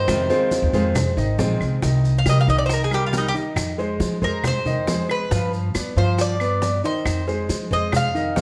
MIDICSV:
0, 0, Header, 1, 7, 480
1, 0, Start_track
1, 0, Key_signature, -3, "minor"
1, 0, Tempo, 436015
1, 87, Time_signature, 4, 2, 24, 8
1, 9258, End_track
2, 0, Start_track
2, 0, Title_t, "Cuban tres"
2, 0, Program_c, 0, 25
2, 0, Note_on_c, 0, 72, 107
2, 1491, Note_off_c, 0, 72, 0
2, 2405, Note_on_c, 0, 77, 80
2, 2503, Note_off_c, 0, 77, 0
2, 2524, Note_on_c, 0, 75, 74
2, 2622, Note_off_c, 0, 75, 0
2, 2649, Note_on_c, 0, 77, 72
2, 2744, Note_off_c, 0, 77, 0
2, 2749, Note_on_c, 0, 75, 78
2, 2815, Note_off_c, 0, 75, 0
2, 2845, Note_on_c, 0, 74, 76
2, 2904, Note_off_c, 0, 74, 0
2, 2927, Note_on_c, 0, 72, 75
2, 2985, Note_off_c, 0, 72, 0
2, 3010, Note_on_c, 0, 70, 62
2, 3105, Note_off_c, 0, 70, 0
2, 3129, Note_on_c, 0, 68, 69
2, 3225, Note_off_c, 0, 68, 0
2, 3238, Note_on_c, 0, 67, 85
2, 3339, Note_off_c, 0, 67, 0
2, 3374, Note_on_c, 0, 65, 58
2, 3468, Note_off_c, 0, 65, 0
2, 3497, Note_on_c, 0, 63, 61
2, 3589, Note_off_c, 0, 63, 0
2, 3616, Note_on_c, 0, 67, 84
2, 3673, Note_off_c, 0, 67, 0
2, 4669, Note_on_c, 0, 70, 80
2, 4891, Note_off_c, 0, 70, 0
2, 4925, Note_on_c, 0, 72, 92
2, 5582, Note_off_c, 0, 72, 0
2, 5625, Note_on_c, 0, 71, 79
2, 6063, Note_off_c, 0, 71, 0
2, 6583, Note_on_c, 0, 72, 80
2, 6808, Note_off_c, 0, 72, 0
2, 6839, Note_on_c, 0, 74, 88
2, 7499, Note_off_c, 0, 74, 0
2, 7546, Note_on_c, 0, 72, 77
2, 7983, Note_off_c, 0, 72, 0
2, 8512, Note_on_c, 0, 75, 73
2, 8732, Note_off_c, 0, 75, 0
2, 8768, Note_on_c, 0, 77, 88
2, 9258, Note_off_c, 0, 77, 0
2, 9258, End_track
3, 0, Start_track
3, 0, Title_t, "Grand piano"
3, 0, Program_c, 1, 0
3, 0, Note_on_c, 1, 51, 82
3, 0, Note_on_c, 1, 63, 81
3, 0, Note_on_c, 1, 75, 81
3, 240, Note_off_c, 1, 51, 0
3, 242, Note_off_c, 1, 63, 0
3, 245, Note_off_c, 1, 75, 0
3, 328, Note_on_c, 1, 56, 86
3, 331, Note_on_c, 1, 68, 74
3, 334, Note_on_c, 1, 72, 81
3, 721, Note_off_c, 1, 56, 0
3, 723, Note_off_c, 1, 68, 0
3, 724, Note_off_c, 1, 72, 0
3, 811, Note_on_c, 1, 56, 66
3, 814, Note_on_c, 1, 68, 75
3, 819, Note_on_c, 1, 72, 75
3, 1203, Note_off_c, 1, 56, 0
3, 1204, Note_off_c, 1, 68, 0
3, 1208, Note_off_c, 1, 72, 0
3, 1289, Note_on_c, 1, 51, 74
3, 1292, Note_on_c, 1, 63, 85
3, 1295, Note_on_c, 1, 75, 85
3, 1485, Note_off_c, 1, 51, 0
3, 1487, Note_off_c, 1, 63, 0
3, 1488, Note_off_c, 1, 75, 0
3, 1528, Note_on_c, 1, 56, 76
3, 1531, Note_on_c, 1, 68, 66
3, 1536, Note_on_c, 1, 72, 65
3, 1921, Note_off_c, 1, 56, 0
3, 1923, Note_off_c, 1, 68, 0
3, 1926, Note_off_c, 1, 72, 0
3, 2005, Note_on_c, 1, 51, 68
3, 2010, Note_on_c, 1, 63, 76
3, 2013, Note_on_c, 1, 75, 70
3, 2399, Note_off_c, 1, 51, 0
3, 2402, Note_off_c, 1, 63, 0
3, 2404, Note_off_c, 1, 75, 0
3, 2483, Note_on_c, 1, 55, 62
3, 2486, Note_on_c, 1, 67, 69
3, 2489, Note_on_c, 1, 70, 66
3, 2681, Note_off_c, 1, 55, 0
3, 2683, Note_off_c, 1, 67, 0
3, 2685, Note_off_c, 1, 70, 0
3, 2727, Note_on_c, 1, 51, 81
3, 2731, Note_on_c, 1, 63, 85
3, 2733, Note_on_c, 1, 75, 75
3, 3120, Note_off_c, 1, 51, 0
3, 3123, Note_off_c, 1, 63, 0
3, 3124, Note_off_c, 1, 75, 0
3, 3199, Note_on_c, 1, 55, 72
3, 3203, Note_on_c, 1, 67, 71
3, 3206, Note_on_c, 1, 70, 68
3, 3399, Note_off_c, 1, 55, 0
3, 3401, Note_off_c, 1, 67, 0
3, 3403, Note_off_c, 1, 70, 0
3, 3446, Note_on_c, 1, 55, 67
3, 3447, Note_on_c, 1, 67, 67
3, 3452, Note_on_c, 1, 70, 67
3, 3643, Note_off_c, 1, 55, 0
3, 3644, Note_off_c, 1, 67, 0
3, 3647, Note_off_c, 1, 70, 0
3, 3682, Note_on_c, 1, 51, 75
3, 3685, Note_on_c, 1, 63, 74
3, 3686, Note_on_c, 1, 75, 77
3, 4078, Note_off_c, 1, 51, 0
3, 4079, Note_off_c, 1, 63, 0
3, 4080, Note_off_c, 1, 75, 0
3, 4163, Note_on_c, 1, 56, 85
3, 4167, Note_on_c, 1, 68, 77
3, 4172, Note_on_c, 1, 72, 79
3, 4558, Note_off_c, 1, 56, 0
3, 4561, Note_off_c, 1, 68, 0
3, 4563, Note_off_c, 1, 72, 0
3, 4640, Note_on_c, 1, 56, 75
3, 4646, Note_on_c, 1, 68, 66
3, 4648, Note_on_c, 1, 72, 72
3, 5037, Note_off_c, 1, 56, 0
3, 5040, Note_off_c, 1, 68, 0
3, 5041, Note_off_c, 1, 72, 0
3, 5125, Note_on_c, 1, 51, 84
3, 5128, Note_on_c, 1, 63, 85
3, 5132, Note_on_c, 1, 75, 88
3, 5323, Note_off_c, 1, 51, 0
3, 5325, Note_off_c, 1, 63, 0
3, 5327, Note_off_c, 1, 75, 0
3, 5367, Note_on_c, 1, 56, 77
3, 5372, Note_on_c, 1, 68, 66
3, 5376, Note_on_c, 1, 72, 73
3, 5761, Note_off_c, 1, 56, 0
3, 5764, Note_off_c, 1, 68, 0
3, 5766, Note_off_c, 1, 72, 0
3, 5843, Note_on_c, 1, 53, 81
3, 5847, Note_on_c, 1, 65, 77
3, 5851, Note_on_c, 1, 77, 76
3, 6238, Note_off_c, 1, 53, 0
3, 6241, Note_off_c, 1, 65, 0
3, 6243, Note_off_c, 1, 77, 0
3, 6325, Note_on_c, 1, 59, 72
3, 6328, Note_on_c, 1, 71, 65
3, 6331, Note_on_c, 1, 74, 67
3, 6522, Note_off_c, 1, 59, 0
3, 6524, Note_off_c, 1, 71, 0
3, 6526, Note_off_c, 1, 74, 0
3, 6570, Note_on_c, 1, 53, 91
3, 6573, Note_on_c, 1, 65, 84
3, 6576, Note_on_c, 1, 77, 75
3, 6962, Note_off_c, 1, 53, 0
3, 6964, Note_off_c, 1, 65, 0
3, 6966, Note_off_c, 1, 77, 0
3, 7049, Note_on_c, 1, 59, 79
3, 7051, Note_on_c, 1, 71, 70
3, 7052, Note_on_c, 1, 74, 80
3, 7245, Note_off_c, 1, 59, 0
3, 7246, Note_off_c, 1, 71, 0
3, 7247, Note_off_c, 1, 74, 0
3, 7288, Note_on_c, 1, 59, 62
3, 7292, Note_on_c, 1, 71, 63
3, 7293, Note_on_c, 1, 74, 68
3, 7484, Note_off_c, 1, 59, 0
3, 7487, Note_off_c, 1, 71, 0
3, 7487, Note_off_c, 1, 74, 0
3, 7531, Note_on_c, 1, 51, 78
3, 7533, Note_on_c, 1, 63, 85
3, 7536, Note_on_c, 1, 75, 83
3, 7923, Note_off_c, 1, 51, 0
3, 7924, Note_off_c, 1, 63, 0
3, 7926, Note_off_c, 1, 75, 0
3, 8008, Note_on_c, 1, 56, 81
3, 8009, Note_on_c, 1, 68, 77
3, 8013, Note_on_c, 1, 72, 77
3, 8401, Note_off_c, 1, 56, 0
3, 8402, Note_off_c, 1, 68, 0
3, 8404, Note_off_c, 1, 72, 0
3, 8490, Note_on_c, 1, 56, 68
3, 8494, Note_on_c, 1, 68, 67
3, 8499, Note_on_c, 1, 72, 69
3, 8882, Note_off_c, 1, 56, 0
3, 8885, Note_off_c, 1, 68, 0
3, 8887, Note_off_c, 1, 72, 0
3, 8968, Note_on_c, 1, 51, 87
3, 8970, Note_on_c, 1, 63, 77
3, 8974, Note_on_c, 1, 75, 85
3, 9164, Note_off_c, 1, 51, 0
3, 9165, Note_off_c, 1, 63, 0
3, 9168, Note_off_c, 1, 75, 0
3, 9209, Note_on_c, 1, 56, 67
3, 9212, Note_on_c, 1, 68, 64
3, 9216, Note_on_c, 1, 72, 67
3, 9258, Note_off_c, 1, 56, 0
3, 9258, Note_off_c, 1, 68, 0
3, 9258, Note_off_c, 1, 72, 0
3, 9258, End_track
4, 0, Start_track
4, 0, Title_t, "Nylon-string guitar"
4, 0, Program_c, 2, 24
4, 83, Note_on_c, 2, 48, 74
4, 86, Note_on_c, 2, 51, 75
4, 94, Note_on_c, 2, 56, 77
4, 95, Note_on_c, 2, 60, 89
4, 100, Note_on_c, 2, 65, 81
4, 312, Note_off_c, 2, 65, 0
4, 315, Note_off_c, 2, 48, 0
4, 317, Note_off_c, 2, 51, 0
4, 317, Note_off_c, 2, 60, 0
4, 321, Note_off_c, 2, 56, 0
4, 325, Note_on_c, 2, 65, 69
4, 330, Note_on_c, 2, 60, 71
4, 336, Note_on_c, 2, 56, 60
4, 343, Note_on_c, 2, 51, 60
4, 796, Note_off_c, 2, 65, 0
4, 799, Note_off_c, 2, 60, 0
4, 802, Note_off_c, 2, 56, 0
4, 805, Note_off_c, 2, 51, 0
4, 808, Note_on_c, 2, 65, 73
4, 814, Note_on_c, 2, 60, 65
4, 823, Note_on_c, 2, 56, 58
4, 824, Note_on_c, 2, 51, 55
4, 1038, Note_off_c, 2, 65, 0
4, 1041, Note_off_c, 2, 60, 0
4, 1045, Note_off_c, 2, 56, 0
4, 1046, Note_off_c, 2, 51, 0
4, 1534, Note_on_c, 2, 51, 45
4, 1539, Note_on_c, 2, 56, 55
4, 1543, Note_on_c, 2, 60, 60
4, 1552, Note_on_c, 2, 65, 56
4, 2000, Note_off_c, 2, 51, 0
4, 2003, Note_off_c, 2, 56, 0
4, 2005, Note_off_c, 2, 60, 0
4, 2009, Note_off_c, 2, 65, 0
4, 9258, End_track
5, 0, Start_track
5, 0, Title_t, "Upright bass"
5, 0, Program_c, 3, 32
5, 85, Note_on_c, 3, 41, 98
5, 314, Note_off_c, 3, 41, 0
5, 686, Note_on_c, 3, 39, 91
5, 797, Note_off_c, 3, 39, 0
5, 804, Note_on_c, 3, 41, 81
5, 1261, Note_off_c, 3, 41, 0
5, 1286, Note_on_c, 3, 32, 87
5, 1502, Note_off_c, 3, 32, 0
5, 1524, Note_on_c, 3, 34, 76
5, 1741, Note_off_c, 3, 34, 0
5, 1766, Note_on_c, 3, 36, 72
5, 1982, Note_off_c, 3, 36, 0
5, 2007, Note_on_c, 3, 36, 100
5, 2463, Note_off_c, 3, 36, 0
5, 2485, Note_on_c, 3, 48, 88
5, 2714, Note_off_c, 3, 48, 0
5, 2722, Note_on_c, 3, 36, 88
5, 3640, Note_off_c, 3, 36, 0
5, 3919, Note_on_c, 3, 41, 101
5, 4379, Note_off_c, 3, 41, 0
5, 4402, Note_on_c, 3, 53, 91
5, 4632, Note_off_c, 3, 53, 0
5, 4643, Note_on_c, 3, 41, 84
5, 5561, Note_off_c, 3, 41, 0
5, 5846, Note_on_c, 3, 43, 100
5, 6303, Note_off_c, 3, 43, 0
5, 6328, Note_on_c, 3, 55, 79
5, 6555, Note_off_c, 3, 55, 0
5, 6565, Note_on_c, 3, 43, 89
5, 7482, Note_off_c, 3, 43, 0
5, 7766, Note_on_c, 3, 41, 96
5, 8222, Note_off_c, 3, 41, 0
5, 8247, Note_on_c, 3, 53, 84
5, 8475, Note_off_c, 3, 53, 0
5, 8485, Note_on_c, 3, 41, 91
5, 9170, Note_off_c, 3, 41, 0
5, 9207, Note_on_c, 3, 38, 73
5, 9258, Note_off_c, 3, 38, 0
5, 9258, End_track
6, 0, Start_track
6, 0, Title_t, "Muted nylon-string guitar strokes"
6, 1054, Note_on_c, 9, 29, 64
6, 1165, Note_off_c, 9, 29, 0
6, 9258, End_track
7, 0, Start_track
7, 0, Title_t, "Drums"
7, 83, Note_on_c, 9, 63, 34
7, 88, Note_on_c, 9, 60, 72
7, 90, Note_on_c, 9, 75, 64
7, 91, Note_on_c, 9, 70, 76
7, 193, Note_off_c, 9, 63, 0
7, 198, Note_off_c, 9, 60, 0
7, 200, Note_off_c, 9, 75, 0
7, 201, Note_off_c, 9, 70, 0
7, 328, Note_on_c, 9, 63, 32
7, 330, Note_on_c, 9, 70, 32
7, 332, Note_on_c, 9, 60, 40
7, 438, Note_off_c, 9, 63, 0
7, 440, Note_off_c, 9, 70, 0
7, 442, Note_off_c, 9, 60, 0
7, 565, Note_on_c, 9, 63, 70
7, 569, Note_on_c, 9, 70, 67
7, 572, Note_on_c, 9, 60, 57
7, 675, Note_off_c, 9, 63, 0
7, 679, Note_off_c, 9, 70, 0
7, 682, Note_off_c, 9, 60, 0
7, 808, Note_on_c, 9, 63, 32
7, 810, Note_on_c, 9, 70, 31
7, 812, Note_on_c, 9, 60, 37
7, 919, Note_off_c, 9, 63, 0
7, 920, Note_off_c, 9, 70, 0
7, 922, Note_off_c, 9, 60, 0
7, 1049, Note_on_c, 9, 63, 39
7, 1049, Note_on_c, 9, 64, 92
7, 1050, Note_on_c, 9, 70, 72
7, 1050, Note_on_c, 9, 75, 65
7, 1054, Note_on_c, 9, 60, 67
7, 1159, Note_off_c, 9, 63, 0
7, 1159, Note_off_c, 9, 64, 0
7, 1160, Note_off_c, 9, 70, 0
7, 1160, Note_off_c, 9, 75, 0
7, 1164, Note_off_c, 9, 60, 0
7, 1293, Note_on_c, 9, 63, 34
7, 1296, Note_on_c, 9, 70, 32
7, 1403, Note_off_c, 9, 63, 0
7, 1406, Note_off_c, 9, 70, 0
7, 1529, Note_on_c, 9, 60, 64
7, 1529, Note_on_c, 9, 61, 79
7, 1531, Note_on_c, 9, 63, 77
7, 1532, Note_on_c, 9, 70, 73
7, 1639, Note_off_c, 9, 60, 0
7, 1639, Note_off_c, 9, 61, 0
7, 1641, Note_off_c, 9, 63, 0
7, 1642, Note_off_c, 9, 70, 0
7, 1769, Note_on_c, 9, 75, 57
7, 1770, Note_on_c, 9, 60, 34
7, 1777, Note_on_c, 9, 70, 34
7, 1879, Note_off_c, 9, 75, 0
7, 1880, Note_off_c, 9, 60, 0
7, 1887, Note_off_c, 9, 70, 0
7, 2009, Note_on_c, 9, 60, 69
7, 2009, Note_on_c, 9, 63, 33
7, 2014, Note_on_c, 9, 70, 69
7, 2119, Note_off_c, 9, 60, 0
7, 2119, Note_off_c, 9, 63, 0
7, 2124, Note_off_c, 9, 70, 0
7, 2251, Note_on_c, 9, 63, 35
7, 2256, Note_on_c, 9, 70, 32
7, 2361, Note_off_c, 9, 63, 0
7, 2366, Note_off_c, 9, 70, 0
7, 2485, Note_on_c, 9, 60, 64
7, 2485, Note_on_c, 9, 75, 60
7, 2488, Note_on_c, 9, 63, 58
7, 2492, Note_on_c, 9, 70, 77
7, 2595, Note_off_c, 9, 60, 0
7, 2595, Note_off_c, 9, 75, 0
7, 2599, Note_off_c, 9, 63, 0
7, 2602, Note_off_c, 9, 70, 0
7, 2728, Note_on_c, 9, 63, 35
7, 2732, Note_on_c, 9, 70, 27
7, 2838, Note_off_c, 9, 63, 0
7, 2842, Note_off_c, 9, 70, 0
7, 2966, Note_on_c, 9, 60, 66
7, 2967, Note_on_c, 9, 63, 37
7, 2973, Note_on_c, 9, 70, 69
7, 3076, Note_off_c, 9, 60, 0
7, 3077, Note_off_c, 9, 63, 0
7, 3083, Note_off_c, 9, 70, 0
7, 3201, Note_on_c, 9, 63, 31
7, 3207, Note_on_c, 9, 75, 69
7, 3214, Note_on_c, 9, 70, 31
7, 3312, Note_off_c, 9, 63, 0
7, 3317, Note_off_c, 9, 75, 0
7, 3324, Note_off_c, 9, 70, 0
7, 3444, Note_on_c, 9, 63, 36
7, 3447, Note_on_c, 9, 60, 61
7, 3447, Note_on_c, 9, 61, 81
7, 3450, Note_on_c, 9, 70, 66
7, 3554, Note_off_c, 9, 63, 0
7, 3557, Note_off_c, 9, 60, 0
7, 3557, Note_off_c, 9, 61, 0
7, 3560, Note_off_c, 9, 70, 0
7, 3693, Note_on_c, 9, 70, 33
7, 3803, Note_off_c, 9, 70, 0
7, 3924, Note_on_c, 9, 75, 66
7, 3925, Note_on_c, 9, 63, 35
7, 3926, Note_on_c, 9, 60, 72
7, 3933, Note_on_c, 9, 70, 75
7, 4034, Note_off_c, 9, 75, 0
7, 4035, Note_off_c, 9, 63, 0
7, 4036, Note_off_c, 9, 60, 0
7, 4043, Note_off_c, 9, 70, 0
7, 4165, Note_on_c, 9, 63, 32
7, 4169, Note_on_c, 9, 60, 36
7, 4172, Note_on_c, 9, 70, 31
7, 4275, Note_off_c, 9, 63, 0
7, 4279, Note_off_c, 9, 60, 0
7, 4282, Note_off_c, 9, 70, 0
7, 4403, Note_on_c, 9, 63, 61
7, 4406, Note_on_c, 9, 60, 66
7, 4412, Note_on_c, 9, 70, 72
7, 4513, Note_off_c, 9, 63, 0
7, 4517, Note_off_c, 9, 60, 0
7, 4523, Note_off_c, 9, 70, 0
7, 4642, Note_on_c, 9, 63, 35
7, 4650, Note_on_c, 9, 60, 34
7, 4655, Note_on_c, 9, 70, 29
7, 4752, Note_off_c, 9, 63, 0
7, 4760, Note_off_c, 9, 60, 0
7, 4765, Note_off_c, 9, 70, 0
7, 4884, Note_on_c, 9, 63, 37
7, 4884, Note_on_c, 9, 64, 85
7, 4884, Note_on_c, 9, 75, 68
7, 4890, Note_on_c, 9, 60, 68
7, 4895, Note_on_c, 9, 70, 68
7, 4994, Note_off_c, 9, 63, 0
7, 4994, Note_off_c, 9, 64, 0
7, 4994, Note_off_c, 9, 75, 0
7, 5000, Note_off_c, 9, 60, 0
7, 5005, Note_off_c, 9, 70, 0
7, 5127, Note_on_c, 9, 63, 35
7, 5127, Note_on_c, 9, 64, 64
7, 5132, Note_on_c, 9, 70, 30
7, 5237, Note_off_c, 9, 63, 0
7, 5237, Note_off_c, 9, 64, 0
7, 5242, Note_off_c, 9, 70, 0
7, 5366, Note_on_c, 9, 63, 81
7, 5367, Note_on_c, 9, 60, 70
7, 5367, Note_on_c, 9, 61, 78
7, 5372, Note_on_c, 9, 70, 71
7, 5476, Note_off_c, 9, 63, 0
7, 5477, Note_off_c, 9, 60, 0
7, 5477, Note_off_c, 9, 61, 0
7, 5482, Note_off_c, 9, 70, 0
7, 5605, Note_on_c, 9, 60, 37
7, 5609, Note_on_c, 9, 75, 63
7, 5615, Note_on_c, 9, 70, 32
7, 5715, Note_off_c, 9, 60, 0
7, 5719, Note_off_c, 9, 75, 0
7, 5725, Note_off_c, 9, 70, 0
7, 5850, Note_on_c, 9, 60, 70
7, 5852, Note_on_c, 9, 70, 79
7, 5960, Note_off_c, 9, 60, 0
7, 5962, Note_off_c, 9, 70, 0
7, 6086, Note_on_c, 9, 63, 29
7, 6092, Note_on_c, 9, 70, 32
7, 6196, Note_off_c, 9, 63, 0
7, 6202, Note_off_c, 9, 70, 0
7, 6325, Note_on_c, 9, 63, 60
7, 6328, Note_on_c, 9, 75, 63
7, 6329, Note_on_c, 9, 60, 60
7, 6330, Note_on_c, 9, 70, 74
7, 6435, Note_off_c, 9, 63, 0
7, 6438, Note_off_c, 9, 75, 0
7, 6439, Note_off_c, 9, 60, 0
7, 6440, Note_off_c, 9, 70, 0
7, 6566, Note_on_c, 9, 63, 35
7, 6572, Note_on_c, 9, 70, 30
7, 6676, Note_off_c, 9, 63, 0
7, 6682, Note_off_c, 9, 70, 0
7, 6809, Note_on_c, 9, 63, 36
7, 6810, Note_on_c, 9, 60, 62
7, 6810, Note_on_c, 9, 70, 70
7, 6919, Note_off_c, 9, 63, 0
7, 6920, Note_off_c, 9, 60, 0
7, 6920, Note_off_c, 9, 70, 0
7, 7046, Note_on_c, 9, 63, 30
7, 7046, Note_on_c, 9, 75, 69
7, 7053, Note_on_c, 9, 70, 29
7, 7156, Note_off_c, 9, 63, 0
7, 7156, Note_off_c, 9, 75, 0
7, 7163, Note_off_c, 9, 70, 0
7, 7287, Note_on_c, 9, 60, 61
7, 7287, Note_on_c, 9, 61, 85
7, 7287, Note_on_c, 9, 63, 34
7, 7292, Note_on_c, 9, 70, 71
7, 7397, Note_off_c, 9, 60, 0
7, 7397, Note_off_c, 9, 61, 0
7, 7397, Note_off_c, 9, 63, 0
7, 7402, Note_off_c, 9, 70, 0
7, 7532, Note_on_c, 9, 70, 30
7, 7642, Note_off_c, 9, 70, 0
7, 7767, Note_on_c, 9, 75, 72
7, 7768, Note_on_c, 9, 63, 35
7, 7769, Note_on_c, 9, 60, 61
7, 7776, Note_on_c, 9, 70, 68
7, 7877, Note_off_c, 9, 75, 0
7, 7878, Note_off_c, 9, 63, 0
7, 7879, Note_off_c, 9, 60, 0
7, 7886, Note_off_c, 9, 70, 0
7, 8008, Note_on_c, 9, 63, 34
7, 8010, Note_on_c, 9, 60, 38
7, 8017, Note_on_c, 9, 70, 29
7, 8119, Note_off_c, 9, 63, 0
7, 8120, Note_off_c, 9, 60, 0
7, 8127, Note_off_c, 9, 70, 0
7, 8250, Note_on_c, 9, 63, 60
7, 8251, Note_on_c, 9, 60, 57
7, 8254, Note_on_c, 9, 70, 72
7, 8360, Note_off_c, 9, 63, 0
7, 8361, Note_off_c, 9, 60, 0
7, 8364, Note_off_c, 9, 70, 0
7, 8490, Note_on_c, 9, 63, 33
7, 8491, Note_on_c, 9, 60, 36
7, 8501, Note_on_c, 9, 70, 28
7, 8600, Note_off_c, 9, 63, 0
7, 8602, Note_off_c, 9, 60, 0
7, 8611, Note_off_c, 9, 70, 0
7, 8723, Note_on_c, 9, 75, 70
7, 8728, Note_on_c, 9, 60, 72
7, 8730, Note_on_c, 9, 63, 35
7, 8730, Note_on_c, 9, 64, 81
7, 8738, Note_on_c, 9, 70, 69
7, 8833, Note_off_c, 9, 75, 0
7, 8838, Note_off_c, 9, 60, 0
7, 8840, Note_off_c, 9, 63, 0
7, 8840, Note_off_c, 9, 64, 0
7, 8849, Note_off_c, 9, 70, 0
7, 8970, Note_on_c, 9, 63, 30
7, 8979, Note_on_c, 9, 70, 28
7, 9080, Note_off_c, 9, 63, 0
7, 9089, Note_off_c, 9, 70, 0
7, 9206, Note_on_c, 9, 60, 66
7, 9206, Note_on_c, 9, 61, 80
7, 9211, Note_on_c, 9, 63, 77
7, 9216, Note_on_c, 9, 70, 70
7, 9258, Note_off_c, 9, 60, 0
7, 9258, Note_off_c, 9, 61, 0
7, 9258, Note_off_c, 9, 63, 0
7, 9258, Note_off_c, 9, 70, 0
7, 9258, End_track
0, 0, End_of_file